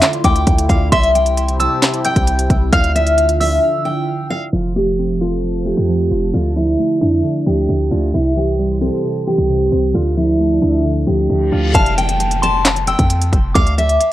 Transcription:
Already playing: D3 A3 E4 F4 C6
0.02 snare, clap, closed hi-hat
0.13 closed hi-hat
0.24 D2 G5 D6, kick, closed hi-hat
0.36 closed hi-hat
0.47 D2, kick, closed hi-hat
0.58 closed hi-hat
0.69 D2 F5, kick, closed hi-hat
0.92 C2 C3 C4 G4 E5 C6, kick, closed hi-hat
1.03 closed hi-hat
1.15 G5, closed hi-hat
1.26 closed hi-hat
1.37 closed hi-hat
1.48 closed hi-hat
1.60 A5 E6, closed hi-hat
1.82 snare, clap, closed hi-hat
1.94 closed hi-hat
2.05 G5 G6, closed hi-hat
2.16 C2, kick, closed hi-hat
2.27 closed hi-hat
2.39 closed hi-hat
2.50 C2, kick, closed hi-hat
2.73 D2 D3 D4 F4 F5 F6, kick, closed hi-hat
2.84 closed hi-hat
2.95 E5, closed hi-hat
3.07 closed hi-hat
3.18 closed hi-hat
3.29 closed hi-hat
3.40 E5 E6, open hi-hat
3.85 G5
4.30 F5
4.53 F1 F3 F4 A4 C5 A5
4.76 A3 G4
4.99 C4
5.21 F4 A4
5.44 F3
5.65 A3 G4
5.77 F2
5.89 F3
6.11 F1 F4
6.34 D2 D3 F4 D5 E5
6.56 F3 E4
6.79 A3
7.01 F2 D4 E4
7.24 D3
7.46 D2 F3 G4
7.69 D2 D3
7.91 D2 D4 F4
8.14 C2 C3 E4 G4 C5 C6
8.37 E3 G4
8.59 G3
8.81 C4 A4
9.05 C3
9.27 E3 G4
9.38 C2
9.49 C3
9.72 C2 C4
9.94 D2 D3 F3 F4 D5 A5
10.17 F3 E4
10.39 A3
10.62 D2 D4 E4
10.85 D3, reverse cymbal
11.07 D2 F3 G4
11.30 D2 D3
11.52 D2 D4 F4
11.74 F1 F5 A5, kick, closed hi-hat, downlifter
11.86 closed hi-hat
11.98 G5, closed hi-hat
12.09 closed hi-hat
12.20 closed hi-hat
12.31 closed hi-hat
12.42 A5 C6, closed hi-hat
12.65 snare, clap, closed hi-hat
12.76 closed hi-hat
12.87 G5 E6, closed hi-hat
12.99 F2, kick, closed hi-hat
13.10 closed hi-hat
13.22 closed hi-hat
13.33 F1, kick, closed hi-hat
13.55 D2 F5 D6, kick, closed hi-hat
13.67 closed hi-hat
13.78 E5, closed hi-hat
13.89 closed hi-hat
14.01 closed hi-hat

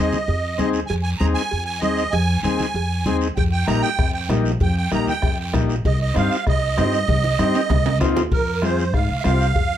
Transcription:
Already playing: C4 D#4 G#4 D#5
0.12 low conga, short guiro
0.27 F2, cowbell, high conga, long guiro
0.58 D#2 C4 D#4 G#4, cowbell, high conga, low conga, short guiro
0.73 short guiro
0.87 F2 G#5, cowbell, high conga, long guiro
1.03 G#5
1.18 D#2 C4 D#4 G#4 A#5, cowbell, high conga, short guiro
1.34 G#5, short guiro
1.51 F2, cowbell, high conga, long guiro
1.65 G#5
1.80 D#2 C4 D#4 G#4 D#5, cowbell, high conga, short guiro
1.97 short guiro
2.11 F2 G#5, cowbell, high conga, long guiro
2.43 D#2 C4 D#4 G#4 G#5, cowbell, high conga, short guiro
2.59 low conga, short guiro
2.74 F2, cowbell, high conga, long guiro
3.06 D#2 C4 D#4 G#4, cowbell, high conga, low conga, short guiro
3.21 short guiro
3.36 F2 G5, bombo low, cowbell, high conga, long guiro
3.52 G5
3.67 A#1 A#3 D#4 G4 A#5, bombo rim, cowbell, high conga, short guiro
3.82 G5, short guiro
3.99 F2, bombo low, bombo rim, cowbell, long guiro
4.13 G5
4.29 A#1 A#3 D#4 G4, bombo rim, cowbell, high conga, low timbale, short guiro
4.45 short guiro
4.60 F2 G5, bombo low, cowbell, high conga, long guiro
4.77 G5
4.91 A#1 A#3 D#4 G4 A#5, bombo rim, cowbell, high conga, short guiro
5.07 G5, low conga, short guiro
5.22 F2, bombo low, bombo rim, cowbell, high conga, long guiro
5.40 G5
5.53 A#1 A#3 D#4 G4, bombo low, bombo rim, cowbell, high conga, low conga, short guiro
5.69 short guiro
5.85 C2 D#5, bombo low, cowbell, high conga, long guiro
6.01 D#5
6.14 G2 C4 D#4 G4 F5, bombo rim, cowbell, high conga, short guiro
6.32 short guiro
6.47 C2 D#5, bombo low, bombo rim, cowbell, high conga, long guiro
6.77 G2 C4 D#4 G4, bombo rim, cowbell, high conga, low timbale, short guiro
6.93 short guiro
7.08 C2, bombo low, cowbell, high conga, long guiro
7.24 high conga
7.38 G2 C4 D#4 G4, bombo rim, cowbell, high conga, short guiro
7.54 high timbale, short guiro
7.70 C2, bombo low, bombo rim, cowbell, low conga, high timbale, long guiro
7.86 low conga, high timbale
8.00 D#2 C4 D#4 F4, bombo low, bombo rim, cowbell, low conga, low timbale, short guiro
8.17 low conga, low timbale, short guiro
8.31 F2 A#4, bombo low, cowbell, high conga, long guiro
8.62 C4 F4 G#4 C5, bombo rim, cowbell, high conga, short guiro
8.79 short guiro
8.94 G#2 F5, bombo low, bombo rim, cowbell, high conga, long guiro
9.09 C2
9.20 E5, bombo rim
9.24 C2 C4 F4 G4 F5, cowbell, high conga, low timbale, short guiro
9.40 short guiro
9.55 F2, bombo low, cowbell, high conga, long guiro

